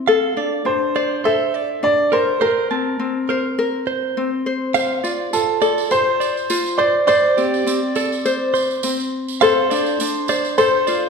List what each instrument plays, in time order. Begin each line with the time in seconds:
Already playing: ukulele C4 E4 C5
0.08 ukulele A4, clean electric guitar F5
0.37 ukulele D4, clean electric guitar D5
0.65 ukulele D4, upright piano C5
0.95 ukulele C5, clean electric guitar D5
1.24 ukulele A4, clean electric guitar C5, upright piano E5
1.54 clean electric guitar D5
1.83 ukulele D4, upright piano D5
2.12 clean electric guitar A#4, ukulele A#4, upright piano C5
2.41 ukulele A#4, upright piano A#4, clean electric guitar C5
2.71 ukulele C4, clean electric guitar A5
2.99 ukulele C4
3.29 clean electric guitar A#4, ukulele C5
3.59 ukulele A#4
3.87 clean electric guitar C5
4.17 ukulele C4
4.46 ukulele C5
4.74 ukulele C5, clean electric guitar F5, tambourine
5.04 ukulele F4, clean electric guitar D5, tambourine
5.33 ukulele F4, upright piano A4, tambourine
5.62 ukulele A4, clean electric guitar D5, tambourine
5.78 tambourine
5.91 ukulele C5, clean electric guitar C5, upright piano C5, tambourine
6.20 clean electric guitar D5, tambourine
6.37 tambourine
6.50 ukulele F4, tambourine
6.66 tambourine
6.78 clean electric guitar C5, ukulele C5, upright piano D5
7.07 clean electric guitar C5, ukulele C5, upright piano D5, tambourine
7.37 ukulele C4, clean electric guitar G4, tambourine
7.54 tambourine
7.66 ukulele C4, tambourine
7.95 clean electric guitar A4, ukulele D5, tambourine
8.12 tambourine
8.25 ukulele C5, tambourine
8.54 clean electric guitar C5, tambourine
8.71 tambourine
8.83 ukulele C4, tambourine
9.00 tambourine
9.28 tambourine
9.41 ukulele A4, upright piano C5, clean electric guitar F5, tambourine
9.70 ukulele D4, clean electric guitar D5, tambourine
9.86 tambourine
10.00 ukulele D4, tambourine
10.28 ukulele C5, clean electric guitar D5, tambourine
10.45 tambourine
10.58 ukulele A4, upright piano C5, clean electric guitar C5, tambourine
10.87 ukulele F4, clean electric guitar D5, tambourine